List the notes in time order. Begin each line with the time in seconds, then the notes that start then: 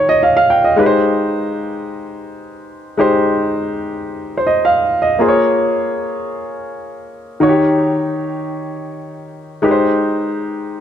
Already playing: D#3 D#4 G4 C#5
0.09 D#5
0.23 D#5 F5
0.37 F5
0.50 G5
0.64 D#5
0.76 G#3 D#4 G4 B4
0.86 C5
2.97 G#3 D#4 G4 C5
4.37 C5
4.47 D#5
4.65 F5
5.02 D#5
5.19 A#3 F4 G#4 C5
5.28 C#5
7.40 D#3 D#4 F#4 C#5
7.48 G4
9.62 G#3 D#4 G4 B4
9.71 C5